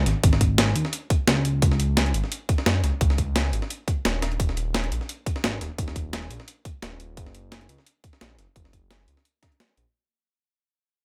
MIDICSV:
0, 0, Header, 1, 3, 480
1, 0, Start_track
1, 0, Tempo, 346821
1, 325, Time_signature, 4, 2, 24, 8
1, 15286, End_track
2, 0, Start_track
2, 0, Title_t, "Analog synth bass"
2, 0, Program_c, 0, 38
2, 84, Note_on_c, 0, 32, 96
2, 200, Note_off_c, 0, 32, 0
2, 326, Note_on_c, 0, 32, 99
2, 1027, Note_off_c, 0, 32, 0
2, 1045, Note_on_c, 0, 39, 87
2, 1160, Note_off_c, 0, 39, 0
2, 1766, Note_on_c, 0, 37, 91
2, 2228, Note_off_c, 0, 37, 0
2, 2246, Note_on_c, 0, 37, 106
2, 2948, Note_off_c, 0, 37, 0
2, 2966, Note_on_c, 0, 32, 87
2, 3081, Note_off_c, 0, 32, 0
2, 3685, Note_on_c, 0, 42, 89
2, 3903, Note_off_c, 0, 42, 0
2, 3925, Note_on_c, 0, 37, 95
2, 4040, Note_off_c, 0, 37, 0
2, 4166, Note_on_c, 0, 37, 100
2, 4868, Note_off_c, 0, 37, 0
2, 4886, Note_on_c, 0, 32, 88
2, 5001, Note_off_c, 0, 32, 0
2, 5607, Note_on_c, 0, 27, 90
2, 6068, Note_off_c, 0, 27, 0
2, 6084, Note_on_c, 0, 27, 98
2, 6787, Note_off_c, 0, 27, 0
2, 6806, Note_on_c, 0, 34, 85
2, 6920, Note_off_c, 0, 34, 0
2, 7527, Note_on_c, 0, 32, 88
2, 7744, Note_off_c, 0, 32, 0
2, 7767, Note_on_c, 0, 27, 99
2, 7881, Note_off_c, 0, 27, 0
2, 8006, Note_on_c, 0, 27, 101
2, 8707, Note_off_c, 0, 27, 0
2, 8726, Note_on_c, 0, 34, 87
2, 8840, Note_off_c, 0, 34, 0
2, 9447, Note_on_c, 0, 27, 86
2, 9908, Note_off_c, 0, 27, 0
2, 9927, Note_on_c, 0, 30, 99
2, 10628, Note_off_c, 0, 30, 0
2, 10647, Note_on_c, 0, 37, 82
2, 10761, Note_off_c, 0, 37, 0
2, 11364, Note_on_c, 0, 34, 88
2, 11582, Note_off_c, 0, 34, 0
2, 11606, Note_on_c, 0, 30, 90
2, 11721, Note_off_c, 0, 30, 0
2, 11845, Note_on_c, 0, 30, 104
2, 12547, Note_off_c, 0, 30, 0
2, 12565, Note_on_c, 0, 37, 84
2, 12680, Note_off_c, 0, 37, 0
2, 13526, Note_on_c, 0, 34, 87
2, 13640, Note_off_c, 0, 34, 0
2, 15286, End_track
3, 0, Start_track
3, 0, Title_t, "Drums"
3, 86, Note_on_c, 9, 42, 62
3, 87, Note_off_c, 9, 42, 0
3, 87, Note_on_c, 9, 38, 40
3, 87, Note_on_c, 9, 42, 69
3, 225, Note_off_c, 9, 38, 0
3, 225, Note_off_c, 9, 42, 0
3, 326, Note_on_c, 9, 36, 127
3, 326, Note_on_c, 9, 42, 85
3, 453, Note_on_c, 9, 38, 55
3, 464, Note_off_c, 9, 36, 0
3, 464, Note_off_c, 9, 42, 0
3, 566, Note_on_c, 9, 36, 62
3, 566, Note_on_c, 9, 42, 71
3, 592, Note_off_c, 9, 38, 0
3, 704, Note_off_c, 9, 36, 0
3, 704, Note_off_c, 9, 42, 0
3, 805, Note_on_c, 9, 38, 126
3, 805, Note_on_c, 9, 42, 94
3, 806, Note_off_c, 9, 38, 0
3, 806, Note_off_c, 9, 42, 0
3, 806, Note_on_c, 9, 38, 117
3, 806, Note_on_c, 9, 42, 90
3, 934, Note_off_c, 9, 38, 0
3, 934, Note_on_c, 9, 38, 40
3, 944, Note_off_c, 9, 42, 0
3, 1046, Note_on_c, 9, 42, 67
3, 1072, Note_off_c, 9, 38, 0
3, 1174, Note_on_c, 9, 38, 44
3, 1184, Note_off_c, 9, 42, 0
3, 1285, Note_on_c, 9, 42, 97
3, 1286, Note_off_c, 9, 42, 0
3, 1286, Note_on_c, 9, 42, 88
3, 1312, Note_off_c, 9, 38, 0
3, 1424, Note_off_c, 9, 42, 0
3, 1526, Note_on_c, 9, 36, 104
3, 1526, Note_on_c, 9, 42, 72
3, 1664, Note_off_c, 9, 42, 0
3, 1665, Note_off_c, 9, 36, 0
3, 1765, Note_on_c, 9, 38, 116
3, 1765, Note_on_c, 9, 42, 91
3, 1904, Note_off_c, 9, 38, 0
3, 1904, Note_off_c, 9, 42, 0
3, 2006, Note_on_c, 9, 42, 61
3, 2145, Note_off_c, 9, 42, 0
3, 2246, Note_on_c, 9, 36, 127
3, 2246, Note_on_c, 9, 42, 89
3, 2374, Note_on_c, 9, 38, 45
3, 2384, Note_off_c, 9, 42, 0
3, 2385, Note_off_c, 9, 36, 0
3, 2486, Note_on_c, 9, 42, 66
3, 2512, Note_off_c, 9, 38, 0
3, 2625, Note_off_c, 9, 42, 0
3, 2726, Note_on_c, 9, 38, 110
3, 2726, Note_on_c, 9, 42, 90
3, 2854, Note_off_c, 9, 42, 0
3, 2854, Note_on_c, 9, 42, 43
3, 2864, Note_off_c, 9, 38, 0
3, 2966, Note_off_c, 9, 42, 0
3, 2966, Note_on_c, 9, 42, 67
3, 2967, Note_off_c, 9, 42, 0
3, 2967, Note_on_c, 9, 42, 69
3, 3095, Note_on_c, 9, 38, 35
3, 3105, Note_off_c, 9, 42, 0
3, 3206, Note_on_c, 9, 42, 88
3, 3207, Note_off_c, 9, 42, 0
3, 3207, Note_on_c, 9, 42, 94
3, 3233, Note_off_c, 9, 38, 0
3, 3345, Note_off_c, 9, 42, 0
3, 3446, Note_on_c, 9, 36, 112
3, 3446, Note_on_c, 9, 42, 63
3, 3447, Note_off_c, 9, 42, 0
3, 3447, Note_on_c, 9, 42, 69
3, 3574, Note_on_c, 9, 38, 54
3, 3584, Note_off_c, 9, 36, 0
3, 3585, Note_off_c, 9, 42, 0
3, 3685, Note_off_c, 9, 38, 0
3, 3685, Note_on_c, 9, 38, 127
3, 3685, Note_on_c, 9, 42, 88
3, 3686, Note_off_c, 9, 38, 0
3, 3686, Note_off_c, 9, 42, 0
3, 3686, Note_on_c, 9, 38, 117
3, 3686, Note_on_c, 9, 42, 89
3, 3825, Note_off_c, 9, 38, 0
3, 3825, Note_off_c, 9, 42, 0
3, 3925, Note_on_c, 9, 42, 60
3, 3926, Note_off_c, 9, 42, 0
3, 3926, Note_on_c, 9, 38, 39
3, 3926, Note_on_c, 9, 42, 71
3, 4065, Note_off_c, 9, 38, 0
3, 4065, Note_off_c, 9, 42, 0
3, 4165, Note_on_c, 9, 36, 127
3, 4165, Note_on_c, 9, 42, 85
3, 4167, Note_off_c, 9, 42, 0
3, 4167, Note_on_c, 9, 42, 88
3, 4292, Note_on_c, 9, 38, 52
3, 4304, Note_off_c, 9, 36, 0
3, 4305, Note_off_c, 9, 42, 0
3, 4405, Note_on_c, 9, 36, 61
3, 4405, Note_on_c, 9, 42, 66
3, 4406, Note_off_c, 9, 42, 0
3, 4406, Note_on_c, 9, 42, 64
3, 4431, Note_off_c, 9, 38, 0
3, 4544, Note_off_c, 9, 36, 0
3, 4544, Note_off_c, 9, 42, 0
3, 4645, Note_on_c, 9, 38, 115
3, 4645, Note_on_c, 9, 42, 89
3, 4646, Note_off_c, 9, 38, 0
3, 4646, Note_off_c, 9, 42, 0
3, 4646, Note_on_c, 9, 38, 122
3, 4646, Note_on_c, 9, 42, 90
3, 4773, Note_off_c, 9, 38, 0
3, 4773, Note_on_c, 9, 38, 42
3, 4784, Note_off_c, 9, 42, 0
3, 4887, Note_on_c, 9, 42, 66
3, 4888, Note_off_c, 9, 42, 0
3, 4888, Note_on_c, 9, 42, 61
3, 4912, Note_off_c, 9, 38, 0
3, 5013, Note_on_c, 9, 38, 43
3, 5026, Note_off_c, 9, 42, 0
3, 5126, Note_on_c, 9, 42, 81
3, 5129, Note_off_c, 9, 42, 0
3, 5129, Note_on_c, 9, 42, 89
3, 5152, Note_off_c, 9, 38, 0
3, 5267, Note_off_c, 9, 42, 0
3, 5365, Note_on_c, 9, 36, 105
3, 5366, Note_on_c, 9, 42, 69
3, 5368, Note_off_c, 9, 42, 0
3, 5368, Note_on_c, 9, 42, 60
3, 5503, Note_off_c, 9, 36, 0
3, 5507, Note_off_c, 9, 42, 0
3, 5606, Note_on_c, 9, 38, 117
3, 5606, Note_on_c, 9, 42, 89
3, 5608, Note_off_c, 9, 38, 0
3, 5608, Note_off_c, 9, 42, 0
3, 5608, Note_on_c, 9, 38, 122
3, 5608, Note_on_c, 9, 42, 84
3, 5747, Note_off_c, 9, 38, 0
3, 5747, Note_off_c, 9, 42, 0
3, 5846, Note_on_c, 9, 38, 103
3, 5846, Note_on_c, 9, 42, 77
3, 5848, Note_off_c, 9, 42, 0
3, 5848, Note_on_c, 9, 42, 57
3, 5974, Note_off_c, 9, 42, 0
3, 5974, Note_on_c, 9, 42, 39
3, 5984, Note_off_c, 9, 38, 0
3, 6085, Note_on_c, 9, 36, 119
3, 6086, Note_off_c, 9, 42, 0
3, 6086, Note_on_c, 9, 42, 88
3, 6088, Note_off_c, 9, 42, 0
3, 6088, Note_on_c, 9, 42, 91
3, 6214, Note_on_c, 9, 38, 44
3, 6224, Note_off_c, 9, 36, 0
3, 6226, Note_off_c, 9, 42, 0
3, 6325, Note_on_c, 9, 42, 70
3, 6327, Note_off_c, 9, 42, 0
3, 6327, Note_on_c, 9, 42, 64
3, 6352, Note_off_c, 9, 38, 0
3, 6466, Note_off_c, 9, 42, 0
3, 6566, Note_on_c, 9, 38, 119
3, 6566, Note_on_c, 9, 42, 83
3, 6567, Note_off_c, 9, 38, 0
3, 6567, Note_off_c, 9, 42, 0
3, 6567, Note_on_c, 9, 38, 118
3, 6567, Note_on_c, 9, 42, 84
3, 6694, Note_off_c, 9, 42, 0
3, 6694, Note_on_c, 9, 42, 45
3, 6706, Note_off_c, 9, 38, 0
3, 6807, Note_off_c, 9, 42, 0
3, 6807, Note_on_c, 9, 42, 66
3, 6808, Note_off_c, 9, 42, 0
3, 6808, Note_on_c, 9, 42, 61
3, 6935, Note_on_c, 9, 38, 36
3, 6947, Note_off_c, 9, 42, 0
3, 7047, Note_on_c, 9, 42, 88
3, 7073, Note_off_c, 9, 38, 0
3, 7186, Note_off_c, 9, 42, 0
3, 7285, Note_on_c, 9, 36, 99
3, 7288, Note_on_c, 9, 42, 65
3, 7415, Note_on_c, 9, 38, 51
3, 7424, Note_off_c, 9, 36, 0
3, 7427, Note_off_c, 9, 42, 0
3, 7527, Note_off_c, 9, 38, 0
3, 7527, Note_on_c, 9, 38, 113
3, 7527, Note_on_c, 9, 42, 90
3, 7528, Note_off_c, 9, 38, 0
3, 7528, Note_off_c, 9, 42, 0
3, 7528, Note_on_c, 9, 38, 114
3, 7528, Note_on_c, 9, 42, 87
3, 7667, Note_off_c, 9, 38, 0
3, 7667, Note_off_c, 9, 42, 0
3, 7767, Note_on_c, 9, 42, 56
3, 7768, Note_off_c, 9, 42, 0
3, 7768, Note_on_c, 9, 38, 38
3, 7768, Note_on_c, 9, 42, 67
3, 7906, Note_off_c, 9, 38, 0
3, 7906, Note_off_c, 9, 42, 0
3, 8006, Note_on_c, 9, 36, 109
3, 8007, Note_on_c, 9, 42, 88
3, 8008, Note_off_c, 9, 42, 0
3, 8008, Note_on_c, 9, 42, 92
3, 8134, Note_on_c, 9, 38, 52
3, 8144, Note_off_c, 9, 36, 0
3, 8146, Note_off_c, 9, 42, 0
3, 8246, Note_on_c, 9, 36, 55
3, 8246, Note_on_c, 9, 42, 69
3, 8248, Note_off_c, 9, 42, 0
3, 8248, Note_on_c, 9, 42, 64
3, 8272, Note_off_c, 9, 38, 0
3, 8384, Note_off_c, 9, 36, 0
3, 8386, Note_off_c, 9, 42, 0
3, 8486, Note_on_c, 9, 38, 117
3, 8486, Note_on_c, 9, 42, 86
3, 8488, Note_off_c, 9, 38, 0
3, 8488, Note_off_c, 9, 42, 0
3, 8488, Note_on_c, 9, 38, 114
3, 8488, Note_on_c, 9, 42, 89
3, 8613, Note_off_c, 9, 38, 0
3, 8613, Note_on_c, 9, 38, 41
3, 8627, Note_off_c, 9, 42, 0
3, 8726, Note_on_c, 9, 42, 67
3, 8728, Note_off_c, 9, 42, 0
3, 8728, Note_on_c, 9, 42, 63
3, 8752, Note_off_c, 9, 38, 0
3, 8854, Note_on_c, 9, 38, 43
3, 8867, Note_off_c, 9, 42, 0
3, 8965, Note_on_c, 9, 42, 83
3, 8967, Note_off_c, 9, 42, 0
3, 8967, Note_on_c, 9, 42, 88
3, 8992, Note_off_c, 9, 38, 0
3, 9106, Note_off_c, 9, 42, 0
3, 9205, Note_on_c, 9, 42, 66
3, 9206, Note_on_c, 9, 36, 93
3, 9207, Note_off_c, 9, 42, 0
3, 9207, Note_on_c, 9, 42, 69
3, 9344, Note_off_c, 9, 36, 0
3, 9346, Note_off_c, 9, 42, 0
3, 9445, Note_on_c, 9, 38, 115
3, 9445, Note_on_c, 9, 42, 87
3, 9447, Note_off_c, 9, 38, 0
3, 9447, Note_off_c, 9, 42, 0
3, 9447, Note_on_c, 9, 38, 107
3, 9447, Note_on_c, 9, 42, 88
3, 9586, Note_off_c, 9, 38, 0
3, 9586, Note_off_c, 9, 42, 0
3, 9685, Note_on_c, 9, 42, 64
3, 9687, Note_off_c, 9, 42, 0
3, 9687, Note_on_c, 9, 42, 61
3, 9825, Note_off_c, 9, 42, 0
3, 9926, Note_on_c, 9, 36, 111
3, 9926, Note_on_c, 9, 42, 84
3, 9927, Note_off_c, 9, 42, 0
3, 9927, Note_on_c, 9, 42, 97
3, 10054, Note_on_c, 9, 38, 45
3, 10064, Note_off_c, 9, 36, 0
3, 10066, Note_off_c, 9, 42, 0
3, 10166, Note_on_c, 9, 42, 68
3, 10167, Note_off_c, 9, 42, 0
3, 10167, Note_on_c, 9, 42, 69
3, 10193, Note_off_c, 9, 38, 0
3, 10306, Note_off_c, 9, 42, 0
3, 10405, Note_on_c, 9, 38, 111
3, 10405, Note_on_c, 9, 42, 88
3, 10407, Note_off_c, 9, 38, 0
3, 10407, Note_off_c, 9, 42, 0
3, 10407, Note_on_c, 9, 38, 107
3, 10407, Note_on_c, 9, 42, 94
3, 10534, Note_off_c, 9, 42, 0
3, 10534, Note_on_c, 9, 42, 42
3, 10545, Note_off_c, 9, 38, 0
3, 10645, Note_off_c, 9, 42, 0
3, 10645, Note_on_c, 9, 42, 64
3, 10646, Note_off_c, 9, 42, 0
3, 10646, Note_on_c, 9, 42, 65
3, 10772, Note_on_c, 9, 38, 35
3, 10785, Note_off_c, 9, 42, 0
3, 10885, Note_on_c, 9, 42, 98
3, 10911, Note_off_c, 9, 38, 0
3, 11024, Note_off_c, 9, 42, 0
3, 11125, Note_on_c, 9, 36, 93
3, 11125, Note_on_c, 9, 42, 67
3, 11126, Note_off_c, 9, 42, 0
3, 11126, Note_on_c, 9, 42, 68
3, 11252, Note_on_c, 9, 38, 53
3, 11264, Note_off_c, 9, 36, 0
3, 11264, Note_off_c, 9, 42, 0
3, 11365, Note_off_c, 9, 38, 0
3, 11365, Note_on_c, 9, 38, 111
3, 11365, Note_on_c, 9, 42, 88
3, 11366, Note_off_c, 9, 38, 0
3, 11366, Note_off_c, 9, 42, 0
3, 11366, Note_on_c, 9, 38, 110
3, 11366, Note_on_c, 9, 42, 91
3, 11504, Note_off_c, 9, 38, 0
3, 11504, Note_off_c, 9, 42, 0
3, 11605, Note_on_c, 9, 42, 61
3, 11606, Note_off_c, 9, 42, 0
3, 11606, Note_on_c, 9, 38, 37
3, 11606, Note_on_c, 9, 42, 69
3, 11744, Note_off_c, 9, 38, 0
3, 11744, Note_off_c, 9, 42, 0
3, 11845, Note_on_c, 9, 36, 108
3, 11845, Note_on_c, 9, 42, 85
3, 11974, Note_on_c, 9, 38, 54
3, 11984, Note_off_c, 9, 36, 0
3, 11984, Note_off_c, 9, 42, 0
3, 12085, Note_on_c, 9, 36, 58
3, 12086, Note_on_c, 9, 42, 66
3, 12087, Note_off_c, 9, 42, 0
3, 12087, Note_on_c, 9, 42, 67
3, 12112, Note_off_c, 9, 38, 0
3, 12224, Note_off_c, 9, 36, 0
3, 12225, Note_off_c, 9, 42, 0
3, 12325, Note_on_c, 9, 38, 108
3, 12325, Note_on_c, 9, 42, 89
3, 12327, Note_off_c, 9, 38, 0
3, 12327, Note_off_c, 9, 42, 0
3, 12327, Note_on_c, 9, 38, 115
3, 12327, Note_on_c, 9, 42, 87
3, 12454, Note_off_c, 9, 38, 0
3, 12454, Note_on_c, 9, 38, 39
3, 12465, Note_off_c, 9, 42, 0
3, 12565, Note_on_c, 9, 42, 66
3, 12566, Note_off_c, 9, 42, 0
3, 12566, Note_on_c, 9, 42, 64
3, 12593, Note_off_c, 9, 38, 0
3, 12695, Note_on_c, 9, 38, 43
3, 12704, Note_off_c, 9, 42, 0
3, 12805, Note_on_c, 9, 42, 94
3, 12807, Note_off_c, 9, 42, 0
3, 12807, Note_on_c, 9, 42, 60
3, 12833, Note_off_c, 9, 38, 0
3, 12945, Note_off_c, 9, 42, 0
3, 13045, Note_on_c, 9, 36, 93
3, 13046, Note_on_c, 9, 38, 106
3, 13046, Note_on_c, 9, 42, 80
3, 13047, Note_off_c, 9, 42, 0
3, 13047, Note_on_c, 9, 42, 70
3, 13175, Note_off_c, 9, 42, 0
3, 13175, Note_on_c, 9, 42, 39
3, 13184, Note_off_c, 9, 36, 0
3, 13185, Note_off_c, 9, 38, 0
3, 13287, Note_off_c, 9, 42, 0
3, 13287, Note_on_c, 9, 42, 61
3, 13288, Note_off_c, 9, 42, 0
3, 13288, Note_on_c, 9, 38, 113
3, 13288, Note_on_c, 9, 42, 93
3, 13416, Note_off_c, 9, 38, 0
3, 13416, Note_on_c, 9, 38, 33
3, 13426, Note_off_c, 9, 42, 0
3, 13527, Note_on_c, 9, 42, 67
3, 13529, Note_off_c, 9, 42, 0
3, 13529, Note_on_c, 9, 42, 63
3, 13554, Note_off_c, 9, 38, 0
3, 13667, Note_off_c, 9, 42, 0
3, 15286, End_track
0, 0, End_of_file